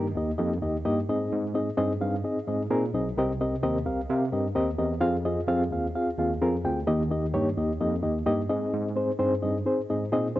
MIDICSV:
0, 0, Header, 1, 3, 480
1, 0, Start_track
1, 0, Tempo, 464037
1, 1365, Time_signature, 4, 2, 24, 8
1, 10754, End_track
2, 0, Start_track
2, 0, Title_t, "Reed electric piano"
2, 0, Program_c, 0, 4
2, 0, Note_on_c, 0, 51, 70
2, 128, Note_off_c, 0, 51, 0
2, 174, Note_on_c, 0, 63, 73
2, 175, Note_on_c, 0, 67, 78
2, 179, Note_on_c, 0, 58, 88
2, 179, Note_on_c, 0, 75, 93
2, 312, Note_off_c, 0, 63, 0
2, 312, Note_off_c, 0, 67, 0
2, 314, Note_off_c, 0, 58, 0
2, 314, Note_off_c, 0, 75, 0
2, 393, Note_on_c, 0, 75, 101
2, 396, Note_on_c, 0, 67, 87
2, 397, Note_on_c, 0, 58, 89
2, 397, Note_on_c, 0, 63, 83
2, 542, Note_off_c, 0, 75, 0
2, 543, Note_off_c, 0, 58, 0
2, 543, Note_off_c, 0, 63, 0
2, 543, Note_off_c, 0, 67, 0
2, 641, Note_on_c, 0, 58, 87
2, 641, Note_on_c, 0, 63, 78
2, 644, Note_on_c, 0, 75, 87
2, 647, Note_on_c, 0, 67, 83
2, 785, Note_off_c, 0, 58, 0
2, 785, Note_off_c, 0, 63, 0
2, 787, Note_off_c, 0, 75, 0
2, 788, Note_off_c, 0, 67, 0
2, 878, Note_on_c, 0, 67, 108
2, 879, Note_on_c, 0, 58, 115
2, 880, Note_on_c, 0, 63, 101
2, 883, Note_on_c, 0, 75, 125
2, 1023, Note_off_c, 0, 67, 0
2, 1024, Note_off_c, 0, 58, 0
2, 1025, Note_off_c, 0, 63, 0
2, 1026, Note_off_c, 0, 75, 0
2, 1124, Note_on_c, 0, 44, 86
2, 1127, Note_on_c, 0, 63, 86
2, 1129, Note_on_c, 0, 60, 98
2, 1131, Note_on_c, 0, 68, 88
2, 1131, Note_on_c, 0, 75, 111
2, 1510, Note_off_c, 0, 63, 0
2, 1511, Note_off_c, 0, 60, 0
2, 1512, Note_off_c, 0, 68, 0
2, 1512, Note_off_c, 0, 75, 0
2, 1597, Note_on_c, 0, 60, 98
2, 1603, Note_on_c, 0, 75, 106
2, 1605, Note_on_c, 0, 63, 84
2, 1605, Note_on_c, 0, 68, 87
2, 1743, Note_off_c, 0, 60, 0
2, 1746, Note_off_c, 0, 75, 0
2, 1747, Note_off_c, 0, 63, 0
2, 1747, Note_off_c, 0, 68, 0
2, 1803, Note_off_c, 0, 44, 0
2, 1833, Note_on_c, 0, 60, 126
2, 1835, Note_on_c, 0, 75, 127
2, 1836, Note_on_c, 0, 63, 117
2, 1839, Note_on_c, 0, 68, 114
2, 1981, Note_off_c, 0, 60, 0
2, 1982, Note_off_c, 0, 63, 0
2, 1982, Note_off_c, 0, 75, 0
2, 1984, Note_off_c, 0, 68, 0
2, 2073, Note_on_c, 0, 60, 83
2, 2075, Note_on_c, 0, 63, 84
2, 2077, Note_on_c, 0, 68, 75
2, 2083, Note_on_c, 0, 77, 99
2, 2221, Note_off_c, 0, 60, 0
2, 2222, Note_off_c, 0, 63, 0
2, 2223, Note_off_c, 0, 68, 0
2, 2226, Note_off_c, 0, 77, 0
2, 2316, Note_on_c, 0, 63, 81
2, 2317, Note_on_c, 0, 60, 82
2, 2318, Note_on_c, 0, 68, 86
2, 2323, Note_on_c, 0, 75, 87
2, 2462, Note_off_c, 0, 63, 0
2, 2463, Note_off_c, 0, 60, 0
2, 2463, Note_off_c, 0, 68, 0
2, 2466, Note_off_c, 0, 75, 0
2, 2557, Note_on_c, 0, 60, 80
2, 2558, Note_on_c, 0, 63, 75
2, 2563, Note_on_c, 0, 75, 92
2, 2567, Note_on_c, 0, 68, 76
2, 2703, Note_off_c, 0, 60, 0
2, 2703, Note_off_c, 0, 63, 0
2, 2706, Note_off_c, 0, 75, 0
2, 2707, Note_off_c, 0, 68, 0
2, 2798, Note_on_c, 0, 60, 122
2, 2799, Note_on_c, 0, 68, 120
2, 2802, Note_on_c, 0, 63, 108
2, 2802, Note_on_c, 0, 70, 127
2, 2943, Note_off_c, 0, 60, 0
2, 2943, Note_off_c, 0, 68, 0
2, 2945, Note_off_c, 0, 63, 0
2, 2945, Note_off_c, 0, 70, 0
2, 3041, Note_on_c, 0, 63, 80
2, 3044, Note_on_c, 0, 68, 82
2, 3045, Note_on_c, 0, 60, 90
2, 3045, Note_on_c, 0, 75, 98
2, 3184, Note_off_c, 0, 63, 0
2, 3186, Note_off_c, 0, 60, 0
2, 3186, Note_off_c, 0, 68, 0
2, 3186, Note_off_c, 0, 75, 0
2, 3288, Note_on_c, 0, 70, 110
2, 3290, Note_on_c, 0, 60, 121
2, 3293, Note_on_c, 0, 67, 114
2, 3296, Note_on_c, 0, 75, 127
2, 3297, Note_on_c, 0, 48, 88
2, 3428, Note_off_c, 0, 70, 0
2, 3429, Note_off_c, 0, 60, 0
2, 3430, Note_off_c, 0, 67, 0
2, 3432, Note_off_c, 0, 75, 0
2, 3525, Note_on_c, 0, 60, 98
2, 3528, Note_on_c, 0, 67, 91
2, 3528, Note_on_c, 0, 75, 113
2, 3530, Note_on_c, 0, 70, 78
2, 3666, Note_off_c, 0, 60, 0
2, 3668, Note_off_c, 0, 67, 0
2, 3668, Note_off_c, 0, 75, 0
2, 3669, Note_off_c, 0, 70, 0
2, 3753, Note_on_c, 0, 67, 104
2, 3757, Note_on_c, 0, 75, 127
2, 3759, Note_on_c, 0, 70, 103
2, 3760, Note_on_c, 0, 60, 122
2, 3900, Note_off_c, 0, 67, 0
2, 3902, Note_off_c, 0, 75, 0
2, 3903, Note_off_c, 0, 70, 0
2, 3904, Note_off_c, 0, 60, 0
2, 3969, Note_off_c, 0, 48, 0
2, 3988, Note_on_c, 0, 60, 90
2, 3992, Note_on_c, 0, 67, 73
2, 3994, Note_on_c, 0, 70, 81
2, 3994, Note_on_c, 0, 77, 89
2, 4137, Note_off_c, 0, 60, 0
2, 4139, Note_off_c, 0, 67, 0
2, 4141, Note_off_c, 0, 70, 0
2, 4141, Note_off_c, 0, 77, 0
2, 4242, Note_on_c, 0, 67, 85
2, 4245, Note_on_c, 0, 60, 83
2, 4245, Note_on_c, 0, 70, 86
2, 4248, Note_on_c, 0, 77, 93
2, 4385, Note_off_c, 0, 67, 0
2, 4386, Note_off_c, 0, 60, 0
2, 4386, Note_off_c, 0, 70, 0
2, 4388, Note_off_c, 0, 77, 0
2, 4472, Note_on_c, 0, 60, 88
2, 4473, Note_on_c, 0, 70, 77
2, 4474, Note_on_c, 0, 67, 86
2, 4479, Note_on_c, 0, 75, 91
2, 4619, Note_off_c, 0, 60, 0
2, 4620, Note_off_c, 0, 70, 0
2, 4621, Note_off_c, 0, 67, 0
2, 4623, Note_off_c, 0, 75, 0
2, 4709, Note_on_c, 0, 60, 127
2, 4711, Note_on_c, 0, 70, 108
2, 4712, Note_on_c, 0, 67, 116
2, 4715, Note_on_c, 0, 75, 127
2, 4858, Note_off_c, 0, 60, 0
2, 4859, Note_off_c, 0, 70, 0
2, 4860, Note_off_c, 0, 67, 0
2, 4861, Note_off_c, 0, 75, 0
2, 4947, Note_on_c, 0, 70, 78
2, 4948, Note_on_c, 0, 67, 82
2, 4949, Note_on_c, 0, 60, 84
2, 4951, Note_on_c, 0, 75, 99
2, 5097, Note_off_c, 0, 70, 0
2, 5098, Note_off_c, 0, 60, 0
2, 5098, Note_off_c, 0, 67, 0
2, 5099, Note_off_c, 0, 75, 0
2, 5178, Note_on_c, 0, 65, 119
2, 5181, Note_on_c, 0, 60, 119
2, 5182, Note_on_c, 0, 77, 127
2, 5187, Note_on_c, 0, 68, 103
2, 5332, Note_off_c, 0, 65, 0
2, 5334, Note_off_c, 0, 60, 0
2, 5335, Note_off_c, 0, 77, 0
2, 5337, Note_off_c, 0, 68, 0
2, 5431, Note_on_c, 0, 60, 100
2, 5432, Note_on_c, 0, 68, 92
2, 5433, Note_on_c, 0, 75, 106
2, 5435, Note_on_c, 0, 65, 85
2, 5579, Note_off_c, 0, 60, 0
2, 5580, Note_off_c, 0, 68, 0
2, 5580, Note_off_c, 0, 75, 0
2, 5581, Note_off_c, 0, 65, 0
2, 5670, Note_on_c, 0, 60, 127
2, 5670, Note_on_c, 0, 65, 116
2, 5670, Note_on_c, 0, 77, 127
2, 5672, Note_on_c, 0, 68, 102
2, 5818, Note_off_c, 0, 60, 0
2, 5819, Note_off_c, 0, 65, 0
2, 5819, Note_off_c, 0, 68, 0
2, 5819, Note_off_c, 0, 77, 0
2, 5918, Note_on_c, 0, 60, 86
2, 5921, Note_on_c, 0, 77, 91
2, 5922, Note_on_c, 0, 65, 72
2, 5922, Note_on_c, 0, 68, 69
2, 6063, Note_off_c, 0, 60, 0
2, 6064, Note_off_c, 0, 65, 0
2, 6064, Note_off_c, 0, 77, 0
2, 6065, Note_off_c, 0, 68, 0
2, 6156, Note_on_c, 0, 60, 85
2, 6159, Note_on_c, 0, 77, 101
2, 6162, Note_on_c, 0, 68, 86
2, 6165, Note_on_c, 0, 65, 86
2, 6302, Note_off_c, 0, 60, 0
2, 6303, Note_off_c, 0, 77, 0
2, 6305, Note_off_c, 0, 68, 0
2, 6306, Note_off_c, 0, 65, 0
2, 6396, Note_on_c, 0, 60, 81
2, 6399, Note_on_c, 0, 65, 87
2, 6399, Note_on_c, 0, 68, 81
2, 6403, Note_on_c, 0, 77, 87
2, 6542, Note_off_c, 0, 60, 0
2, 6543, Note_off_c, 0, 65, 0
2, 6543, Note_off_c, 0, 68, 0
2, 6545, Note_off_c, 0, 77, 0
2, 6636, Note_on_c, 0, 60, 107
2, 6636, Note_on_c, 0, 68, 108
2, 6639, Note_on_c, 0, 65, 99
2, 6639, Note_on_c, 0, 70, 127
2, 6781, Note_off_c, 0, 68, 0
2, 6782, Note_off_c, 0, 60, 0
2, 6783, Note_off_c, 0, 65, 0
2, 6783, Note_off_c, 0, 70, 0
2, 6873, Note_on_c, 0, 65, 76
2, 6876, Note_on_c, 0, 68, 85
2, 6878, Note_on_c, 0, 79, 101
2, 6879, Note_on_c, 0, 60, 87
2, 7020, Note_off_c, 0, 65, 0
2, 7022, Note_off_c, 0, 68, 0
2, 7023, Note_off_c, 0, 60, 0
2, 7023, Note_off_c, 0, 79, 0
2, 7106, Note_on_c, 0, 58, 113
2, 7109, Note_on_c, 0, 51, 80
2, 7110, Note_on_c, 0, 67, 115
2, 7110, Note_on_c, 0, 75, 127
2, 7114, Note_on_c, 0, 63, 108
2, 7257, Note_off_c, 0, 58, 0
2, 7259, Note_off_c, 0, 67, 0
2, 7259, Note_off_c, 0, 75, 0
2, 7261, Note_off_c, 0, 63, 0
2, 7349, Note_on_c, 0, 58, 97
2, 7350, Note_on_c, 0, 63, 79
2, 7357, Note_on_c, 0, 67, 85
2, 7358, Note_on_c, 0, 75, 103
2, 7498, Note_off_c, 0, 58, 0
2, 7499, Note_off_c, 0, 63, 0
2, 7502, Note_off_c, 0, 67, 0
2, 7503, Note_off_c, 0, 75, 0
2, 7588, Note_on_c, 0, 63, 117
2, 7591, Note_on_c, 0, 73, 127
2, 7592, Note_on_c, 0, 58, 113
2, 7595, Note_on_c, 0, 67, 116
2, 7738, Note_off_c, 0, 63, 0
2, 7739, Note_off_c, 0, 73, 0
2, 7740, Note_off_c, 0, 58, 0
2, 7741, Note_off_c, 0, 67, 0
2, 7795, Note_off_c, 0, 51, 0
2, 7831, Note_on_c, 0, 63, 84
2, 7833, Note_on_c, 0, 58, 83
2, 7835, Note_on_c, 0, 67, 85
2, 7838, Note_on_c, 0, 75, 96
2, 7979, Note_off_c, 0, 63, 0
2, 7980, Note_off_c, 0, 58, 0
2, 7981, Note_off_c, 0, 67, 0
2, 7983, Note_off_c, 0, 75, 0
2, 8071, Note_on_c, 0, 63, 87
2, 8075, Note_on_c, 0, 58, 85
2, 8075, Note_on_c, 0, 75, 102
2, 8076, Note_on_c, 0, 67, 74
2, 8219, Note_off_c, 0, 63, 0
2, 8221, Note_off_c, 0, 58, 0
2, 8221, Note_off_c, 0, 75, 0
2, 8222, Note_off_c, 0, 67, 0
2, 8300, Note_on_c, 0, 58, 94
2, 8300, Note_on_c, 0, 63, 78
2, 8303, Note_on_c, 0, 67, 77
2, 8305, Note_on_c, 0, 75, 91
2, 8454, Note_off_c, 0, 58, 0
2, 8454, Note_off_c, 0, 63, 0
2, 8455, Note_off_c, 0, 67, 0
2, 8456, Note_off_c, 0, 75, 0
2, 8542, Note_on_c, 0, 63, 96
2, 8546, Note_on_c, 0, 67, 115
2, 8547, Note_on_c, 0, 58, 110
2, 8550, Note_on_c, 0, 75, 127
2, 8695, Note_off_c, 0, 63, 0
2, 8697, Note_off_c, 0, 67, 0
2, 8698, Note_off_c, 0, 58, 0
2, 8699, Note_off_c, 0, 75, 0
2, 8787, Note_on_c, 0, 44, 88
2, 8787, Note_on_c, 0, 75, 107
2, 8788, Note_on_c, 0, 63, 88
2, 8790, Note_on_c, 0, 60, 91
2, 8793, Note_on_c, 0, 68, 89
2, 9180, Note_off_c, 0, 63, 0
2, 9180, Note_off_c, 0, 75, 0
2, 9181, Note_off_c, 0, 60, 0
2, 9182, Note_off_c, 0, 68, 0
2, 9263, Note_on_c, 0, 60, 92
2, 9271, Note_on_c, 0, 63, 81
2, 9273, Note_on_c, 0, 68, 81
2, 9274, Note_on_c, 0, 72, 100
2, 9416, Note_off_c, 0, 60, 0
2, 9419, Note_off_c, 0, 63, 0
2, 9421, Note_off_c, 0, 68, 0
2, 9421, Note_off_c, 0, 72, 0
2, 9474, Note_off_c, 0, 44, 0
2, 9505, Note_on_c, 0, 60, 117
2, 9507, Note_on_c, 0, 63, 99
2, 9509, Note_on_c, 0, 72, 127
2, 9512, Note_on_c, 0, 68, 102
2, 9657, Note_off_c, 0, 60, 0
2, 9658, Note_off_c, 0, 63, 0
2, 9659, Note_off_c, 0, 72, 0
2, 9660, Note_off_c, 0, 68, 0
2, 9745, Note_on_c, 0, 60, 85
2, 9745, Note_on_c, 0, 63, 79
2, 9750, Note_on_c, 0, 75, 103
2, 9752, Note_on_c, 0, 68, 85
2, 9896, Note_off_c, 0, 63, 0
2, 9897, Note_off_c, 0, 60, 0
2, 9899, Note_off_c, 0, 75, 0
2, 9900, Note_off_c, 0, 68, 0
2, 9987, Note_on_c, 0, 63, 75
2, 9992, Note_on_c, 0, 60, 95
2, 9994, Note_on_c, 0, 68, 91
2, 9998, Note_on_c, 0, 72, 99
2, 10138, Note_off_c, 0, 63, 0
2, 10140, Note_off_c, 0, 60, 0
2, 10141, Note_off_c, 0, 68, 0
2, 10143, Note_off_c, 0, 72, 0
2, 10239, Note_on_c, 0, 60, 84
2, 10240, Note_on_c, 0, 68, 88
2, 10242, Note_on_c, 0, 63, 77
2, 10242, Note_on_c, 0, 75, 95
2, 10384, Note_off_c, 0, 60, 0
2, 10384, Note_off_c, 0, 68, 0
2, 10385, Note_off_c, 0, 63, 0
2, 10385, Note_off_c, 0, 75, 0
2, 10469, Note_on_c, 0, 68, 110
2, 10474, Note_on_c, 0, 60, 114
2, 10475, Note_on_c, 0, 63, 107
2, 10476, Note_on_c, 0, 75, 127
2, 10619, Note_off_c, 0, 68, 0
2, 10622, Note_off_c, 0, 60, 0
2, 10622, Note_off_c, 0, 63, 0
2, 10622, Note_off_c, 0, 75, 0
2, 10711, Note_on_c, 0, 60, 93
2, 10712, Note_on_c, 0, 68, 81
2, 10715, Note_on_c, 0, 72, 93
2, 10716, Note_on_c, 0, 63, 83
2, 10754, Note_off_c, 0, 60, 0
2, 10754, Note_off_c, 0, 63, 0
2, 10754, Note_off_c, 0, 68, 0
2, 10754, Note_off_c, 0, 72, 0
2, 10754, End_track
3, 0, Start_track
3, 0, Title_t, "Tine electric piano"
3, 0, Program_c, 1, 4
3, 0, Note_on_c, 1, 43, 99
3, 108, Note_off_c, 1, 43, 0
3, 157, Note_on_c, 1, 39, 95
3, 347, Note_off_c, 1, 39, 0
3, 400, Note_on_c, 1, 41, 110
3, 588, Note_off_c, 1, 41, 0
3, 643, Note_on_c, 1, 39, 98
3, 830, Note_off_c, 1, 39, 0
3, 885, Note_on_c, 1, 43, 91
3, 1071, Note_off_c, 1, 43, 0
3, 1130, Note_on_c, 1, 44, 99
3, 1314, Note_off_c, 1, 44, 0
3, 1366, Note_on_c, 1, 44, 114
3, 1738, Note_off_c, 1, 44, 0
3, 1839, Note_on_c, 1, 43, 99
3, 2028, Note_off_c, 1, 43, 0
3, 2082, Note_on_c, 1, 43, 93
3, 2269, Note_off_c, 1, 43, 0
3, 2443, Note_on_c, 1, 44, 53
3, 2491, Note_off_c, 1, 44, 0
3, 2559, Note_on_c, 1, 44, 105
3, 2747, Note_off_c, 1, 44, 0
3, 2796, Note_on_c, 1, 46, 101
3, 2985, Note_off_c, 1, 46, 0
3, 3036, Note_on_c, 1, 35, 103
3, 3225, Note_off_c, 1, 35, 0
3, 3275, Note_on_c, 1, 36, 111
3, 3651, Note_off_c, 1, 36, 0
3, 3756, Note_on_c, 1, 39, 107
3, 3945, Note_off_c, 1, 39, 0
3, 3998, Note_on_c, 1, 36, 87
3, 4186, Note_off_c, 1, 36, 0
3, 4237, Note_on_c, 1, 48, 122
3, 4426, Note_off_c, 1, 48, 0
3, 4473, Note_on_c, 1, 43, 98
3, 4663, Note_off_c, 1, 43, 0
3, 4709, Note_on_c, 1, 39, 93
3, 4901, Note_off_c, 1, 39, 0
3, 4951, Note_on_c, 1, 40, 111
3, 5142, Note_off_c, 1, 40, 0
3, 5188, Note_on_c, 1, 41, 101
3, 5566, Note_off_c, 1, 41, 0
3, 5665, Note_on_c, 1, 41, 95
3, 5858, Note_off_c, 1, 41, 0
3, 5906, Note_on_c, 1, 39, 87
3, 6099, Note_off_c, 1, 39, 0
3, 6275, Note_on_c, 1, 39, 46
3, 6325, Note_off_c, 1, 39, 0
3, 6392, Note_on_c, 1, 39, 102
3, 6583, Note_off_c, 1, 39, 0
3, 6638, Note_on_c, 1, 41, 94
3, 6826, Note_off_c, 1, 41, 0
3, 6868, Note_on_c, 1, 38, 107
3, 7060, Note_off_c, 1, 38, 0
3, 7118, Note_on_c, 1, 39, 111
3, 7591, Note_on_c, 1, 43, 100
3, 7601, Note_off_c, 1, 39, 0
3, 7782, Note_off_c, 1, 43, 0
3, 7834, Note_on_c, 1, 39, 89
3, 8024, Note_off_c, 1, 39, 0
3, 8074, Note_on_c, 1, 41, 105
3, 8264, Note_off_c, 1, 41, 0
3, 8312, Note_on_c, 1, 39, 100
3, 8503, Note_off_c, 1, 39, 0
3, 8552, Note_on_c, 1, 43, 98
3, 8743, Note_off_c, 1, 43, 0
3, 8793, Note_on_c, 1, 44, 113
3, 8983, Note_off_c, 1, 44, 0
3, 9028, Note_on_c, 1, 44, 117
3, 9407, Note_off_c, 1, 44, 0
3, 9510, Note_on_c, 1, 43, 86
3, 9702, Note_off_c, 1, 43, 0
3, 9759, Note_on_c, 1, 43, 85
3, 9947, Note_off_c, 1, 43, 0
3, 10125, Note_on_c, 1, 44, 49
3, 10173, Note_off_c, 1, 44, 0
3, 10245, Note_on_c, 1, 44, 96
3, 10431, Note_off_c, 1, 44, 0
3, 10482, Note_on_c, 1, 46, 82
3, 10670, Note_off_c, 1, 46, 0
3, 10754, End_track
0, 0, End_of_file